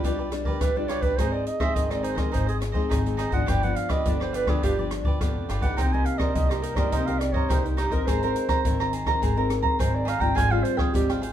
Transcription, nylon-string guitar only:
0.03 B2 G3 D4 F4
0.31 G3 D4 F4
0.61 B2
0.76 G3 D4 F4
1.19 G#2 G#3 C4 D#4
1.60 G#3 C4 D#4
1.76 D#3
1.91 G#3 C4 D#4
2.18 G#3 C4 D#4
2.33 G#2 G#3 C4 D#4
2.75 G#3 C4 D#4
2.91 D#3
3.06 G#3 C4 D#4
3.33 F3 B3 D4
3.49 G2
3.64 F3 B3 D4
4.06 D3 F3 B3 D4
4.47 F3 B3 D4
4.64 G2
4.78 F3 B3 D4
5.21 D3 F3 B3 D4
5.63 A#3 D#4 G4
5.79 C3
5.94 A#3 D#4 G4
6.36 G2 A#3 D#4 G4
6.77 A#3 D#4 G4
6.94 C3
7.07 A#3 D#4 G4
7.50 G2 A#3 D#4 G4
7.91 C4 D#4 A#4
8.07 G#3
8.23 C4 D#4 A#4
8.65 D#3 C4 D#4 A#4
9.07 C4 D#4 A#4
9.22 G#3
9.37 C4 D#4 A#4
9.80 D#3 C4 D#4 A#4
10.21 G3 C4 F4
10.36 G#2
10.51 G3 C4 F4
10.93 G#2 G3 C4 F4

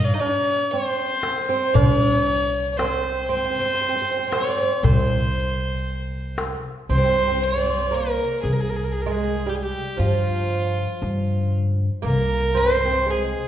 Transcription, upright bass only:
Already playing: G2
1.75 C2
4.83 C2
6.89 C2
8.44 C2
9.99 G2
11.02 G2
12.04 C2

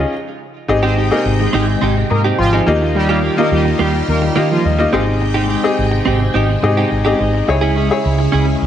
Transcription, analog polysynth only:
0.83 C4 C5
1.11 A#3 A#4
1.40 G#3 G#4
1.54 G#3 G#4
2.10 A#3 A#4
2.38 F3 F4
2.95 G3 G4
3.38 A#3 A#4
3.52 G3 G4
3.80 G3 G4
4.09 A#3 A#4
4.23 G3 G4
4.51 F3 F4

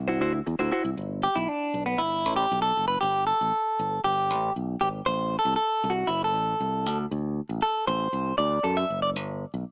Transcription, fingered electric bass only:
Already playing: C2
0.21 D2
0.47 E2
0.59 D2
0.85 C2
0.97 G1
1.36 B1
1.74 B1
1.99 G1
2.26 A1
2.52 B1
2.77 F#1
3.03 G1
3.41 A1
3.79 G1
4.04 G1
4.30 A1
4.56 B1
4.82 G#1
5.07 A1
5.45 C2
5.84 C2
6.09 F#1
6.35 A1
6.60 C2
6.86 D2
7.11 D2
7.49 A1
7.88 A1
8.13 C2
8.39 D2
8.64 F#2
8.90 F#1
9.16 G1
9.54 B1

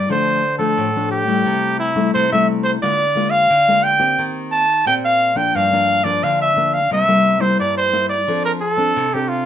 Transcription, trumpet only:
0.11 C5
0.59 A4
1.11 G4
1.80 E4
2.14 C5
2.33 E5
2.64 C5
2.83 D5
3.30 F5
3.84 G5
4.52 A5
4.87 G5
5.05 F5
5.37 G5
5.56 F5
6.04 D5
6.24 F5
6.42 E5
6.74 F5
6.93 E5
7.41 C5
7.60 D5
7.78 C5
8.09 D5
8.45 A#4
8.61 A4
9.14 G4
9.28 F4

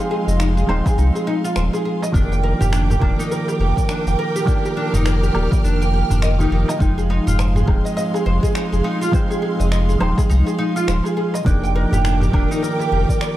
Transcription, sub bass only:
0.27 F1
0.69 D#1
0.98 C2
1.56 D#1
2.14 F1
2.61 F1
3.02 D#1
3.60 F1
4.06 F1
4.94 F1
5.35 D#1
5.64 F1
6.10 F1
6.51 F1
6.80 F1
7.27 F1
7.68 D#1
8.26 F1
8.73 F1
9.60 F1
10.01 D#1
10.30 C2
10.88 D#1
11.46 F1
11.93 F1
12.33 D#1
12.92 F1

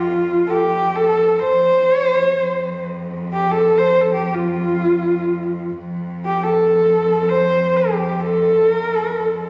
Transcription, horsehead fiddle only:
Already playing: F4
0.47 G4 A4
0.96 A4
1.39 C5
1.92 C#5
2.06 C5
2.21 C#5
2.35 C5
3.33 G4
3.51 A4
3.78 C5
4.01 A4
4.14 G4
4.35 F4
6.25 G4
6.44 A4
7.29 C5
7.77 G4
8.20 A4
8.74 A#4
8.88 A4
9.04 A#4
9.18 A4

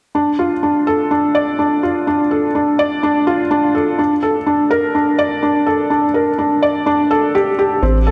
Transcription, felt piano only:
0.15 D4
0.39 F4
0.63 D4
0.87 A4
1.11 D4
1.35 D5
1.59 D4
1.83 F4
2.07 D4
2.31 A4
2.55 D4
2.79 D5
3.03 D4
3.27 F4
3.51 D4
3.75 A4
3.99 D4
4.23 A4
4.47 D4
4.71 A#4
4.95 D4
5.19 D5
5.43 D4
5.66 A4
5.90 D4
6.14 A#4
6.38 D4
6.63 D5
6.86 D4
7.11 A4
7.35 G4
7.59 G4
7.83 C4
8.07 A4

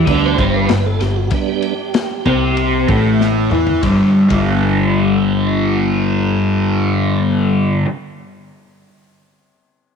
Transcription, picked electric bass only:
0.08 D2
0.39 G1
0.70 G1
1.01 G1
2.26 C2
2.89 A1
3.52 E2
3.83 G1
4.31 G1

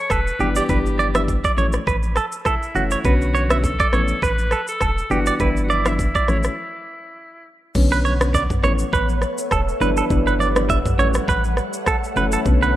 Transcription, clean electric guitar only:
0.11 A4
0.41 G4
0.56 D5
0.70 B4
0.99 D5
1.15 E5
1.45 D5
1.58 C#5
1.87 B4
2.17 A4
2.46 A4
2.75 F#4
2.92 C#5
3.05 B4
3.35 C#5
3.51 E5
3.80 D5
3.93 C#5
4.23 B4
4.52 A4
4.82 A4
5.11 G4
5.27 D5
5.40 B4
5.70 D5
5.86 E5
6.15 D5
6.29 C#5
7.92 B4
8.05 C#5
8.35 D5
8.64 C#5
8.93 B4
9.52 A4
9.81 B4
9.98 A4
10.27 B4
10.40 D5
10.70 E5
10.99 C#5
11.29 B4
11.88 A4
12.17 B4
12.33 A4
12.63 B4

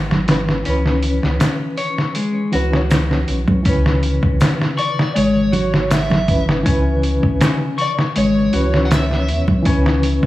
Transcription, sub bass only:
Already playing: G#1
0.67 C#2
1.24 C#2
2.53 C#2
3.28 B1
3.66 C#2
4.23 C#2
5.16 G#1
6.66 C#2
7.24 C#2
8.16 G#1
8.53 C#2
9.28 E2
9.66 C#2
10.23 C#2

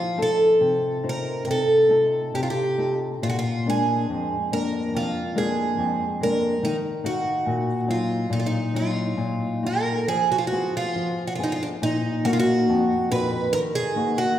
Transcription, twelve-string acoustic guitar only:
Already playing: F4
0.22 A4
1.09 A#4
1.45 A#4
1.51 A4
2.35 G4
2.43 F4
2.50 G4
3.23 F4
3.29 F#4
3.39 F4
3.70 G#4
4.53 A#4
4.97 F4
5.38 G#4
6.23 A#4
6.65 D#4
7.06 F#4
7.91 F4
8.33 D#4
8.39 F4
8.46 D#4
8.76 F4
9.66 A#4
10.08 G#4
10.32 F#4
10.38 F4
10.47 F#4
10.77 F4
11.27 F#4
11.35 F4
11.44 D#4
11.52 F4
11.63 D4
11.83 D#4
12.25 F#4
12.33 F4
12.40 F#4
13.12 B4
13.53 A#4
13.75 G#4
14.18 F#4

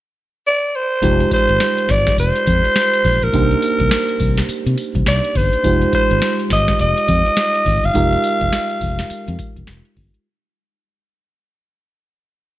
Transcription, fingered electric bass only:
1.03 F1
1.49 G#1
1.89 G#1
2.18 F1
2.47 F2
3.05 A#1
3.22 A#1
3.34 C2
3.80 C2
4.20 C2
4.49 muted fingered electric bass stroke
4.66 C3
4.95 C2
5.07 C2
5.35 G1
5.64 F1
6.11 G#1
6.51 G#1
6.80 F1
7.09 F2
7.66 G#1
7.84 G1
7.95 F1
8.41 F1
8.81 F1
9.11 muted fingered electric bass stroke
9.28 F2
9.56 F1
9.68 F1
9.97 G1

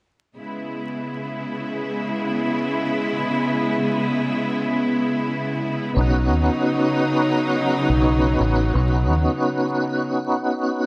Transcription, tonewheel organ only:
5.94 B3 C#4
5.98 D#4 F#4
8.73 B3 C#4
8.78 D#4 F#4

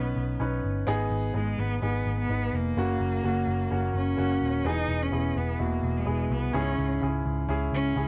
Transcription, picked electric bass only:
Already playing: B1
0.16 B1
0.40 B1
0.64 G1
0.88 G#1
1.10 G#1
1.35 G#1
1.59 G#1
1.82 G#1
2.06 G#1
2.29 G#1
2.53 F1
2.77 F#1
3.00 F#1
3.24 F#1
3.47 F#1
3.71 F#1
3.94 F#1
4.18 F#1
4.41 D#1
4.65 E1
4.89 E1
5.12 E1
5.36 E1
5.60 E1
5.83 E1
6.06 E1
6.30 C2
6.54 C#2
6.78 C#2
7.02 C#2
7.26 C#2
7.49 C#2
7.72 C#2
7.97 C#2

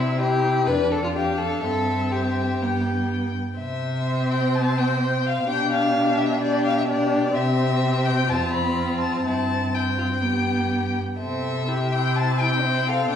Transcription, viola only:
Already playing: C4
0.19 E4
0.67 D4
1.15 D4
1.64 C4
2.61 B3
3.58 C4
5.49 D4
6.42 D4
6.88 D4
7.35 C4
8.29 C4
9.25 C4
9.73 C4
10.22 B3
11.20 C4
11.68 E4
11.91 E4
12.63 C4
13.10 D4

